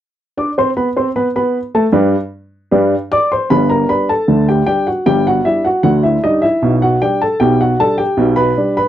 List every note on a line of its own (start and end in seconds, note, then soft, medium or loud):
0.37 0.48 D4 medium
0.37 0.48 D5 medium
0.37 0.48 D6 medium
0.58 0.68 C4 medium
0.58 0.69 C5 medium
0.58 0.69 C6 medium
0.77 0.87 B3 medium
0.77 0.88 B4 medium
0.77 0.87 B5 medium
0.96 1.07 C4 medium
0.96 1.07 C5 medium
0.96 1.07 C6 medium
1.16 1.26 B3 medium
1.16 1.26 B4 medium
1.16 1.27 B5 medium
1.36 1.57 B3 medium
1.36 1.57 B4 medium
1.36 1.57 B5 medium
1.75 1.85 A3 medium
1.75 1.85 A4 medium
1.75 1.85 A5 medium
1.92 2.14 G2 medium
1.92 2.14 G3 medium
1.92 2.14 D4 medium
1.92 2.14 B4 medium
2.71 2.93 G2 medium
2.71 2.93 G3 medium
2.71 2.93 D4 medium
2.71 2.93 B4 medium
3.12 3.30 D5 medium
3.12 3.31 D6 medium
3.32 3.50 C5 medium
3.32 3.50 C6 medium
3.50 3.83 G1 medium
3.50 3.83 G2 medium
3.50 3.69 B4 medium
3.50 3.69 B5 medium
3.70 3.88 A#4 medium
3.70 3.89 A#5 medium
3.89 4.11 G3 soft
3.89 4.11 D4 soft
3.89 4.08 B4 medium
3.89 4.08 B5 medium
4.09 4.45 A4 medium
4.09 4.46 A5 medium
4.28 4.61 D2 medium
4.28 4.61 D3 medium
4.49 4.66 G4 medium
4.49 4.65 G5 medium
4.67 4.88 G3 soft
4.67 4.88 D4 soft
4.67 4.85 G4 medium
4.67 4.86 G5 medium
4.87 5.05 F#4 soft
4.87 5.06 F#5 medium
5.06 5.39 G1 medium
5.06 5.39 G2 medium
5.06 5.24 G4 medium
5.06 5.25 G5 medium
5.27 5.45 F#4 medium
5.27 5.45 F#5 medium
5.45 5.67 G3 soft
5.45 5.67 D4 soft
5.45 5.63 E4 medium
5.45 5.64 E5 medium
5.65 5.83 F#4 medium
5.65 5.82 F#5 medium
5.83 6.16 D2 medium
5.83 6.17 D3 medium
5.83 6.02 F#4 medium
5.83 6.03 F#5 medium
6.03 6.22 E4 soft
6.03 6.23 E5 medium
6.24 6.45 G3 soft
6.24 6.45 D4 soft
6.24 6.42 D#4 medium
6.24 6.42 D#5 medium
6.42 6.79 E4 medium
6.42 6.73 E5 medium
6.62 6.95 B1 medium
6.62 6.95 B2 medium
6.82 7.00 F#4 medium
6.82 7.01 F#5 medium
7.02 7.23 G3 soft
7.02 7.23 D4 soft
7.02 7.20 G4 medium
7.02 7.20 G5 medium
7.22 7.40 A4 medium
7.22 7.40 A5 medium
7.40 7.73 B1 medium
7.40 7.73 B2 medium
7.40 7.58 G4 medium
7.40 7.59 G5 medium
7.61 7.78 F#4 medium
7.61 7.79 F#5 medium
7.80 8.01 G3 soft
7.80 8.01 D4 soft
7.80 7.97 A4 medium
7.80 7.98 A5 medium
7.98 8.34 G4 medium
7.98 8.34 G5 medium
8.17 8.50 B1 medium
8.17 8.50 B2 medium
8.36 8.73 B4 medium
8.36 8.73 B5 medium
8.58 8.78 G3 soft
8.58 8.79 D4 medium
8.77 8.88 B4 medium
8.77 8.88 B5 medium